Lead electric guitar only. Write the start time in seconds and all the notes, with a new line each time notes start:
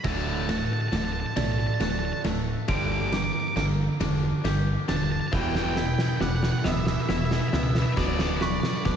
0.04 A5
0.12 A5
0.19 A5
0.27 A5
0.35 A5
0.42 A5
0.51 A5
0.58 A5
0.65 A5
0.73 A5
0.81 A5
0.88 A5
0.96 A5
1.05 A5
1.12 A5
1.20 A5
1.26 A5
1.36 A5
1.44 A5
1.52 A5
1.60 A5
1.67 A5
1.74 A5
1.81 A5
1.91 A5
1.99 A5
2.05 A5
2.13 A5
2.69 D6
2.76 D6
2.85 D6
2.92 D6
3.01 D6
3.09 D6
3.17 D6
3.24 D6
3.33 D6
3.40 D6
3.48 D6
3.56 D6
4.89 A5
4.96 A5
5.04 A5
5.12 A5
5.21 A5
5.28 A5
5.34 G5
5.41 G5
5.49 G5
5.56 G5
5.64 G5
5.70 G5
5.79 G5
5.86 G5
5.94 G5
6.01 G5
6.09 G5
6.17 G5
6.21 F#5
6.30 F#5
6.36 F#5
6.44 F#5
6.52 F#5
6.59 F#5
6.64 E5
6.72 E5
6.80 E5
6.87 E5
6.94 E5
7.02 E5
7.10 E5
7.17 E5
7.25 E5
7.33 E5
7.40 E5
7.48 E5
7.55 E5
7.63 E5
7.71 E5
7.78 E5
7.86 E5
7.98 D5
8.06 D5
8.13 D5
8.21 D5
8.29 D5
8.37 D5
8.45 D5
8.52 D5
8.60 D5
8.68 D5
8.77 D5
8.85 D5
8.91 D5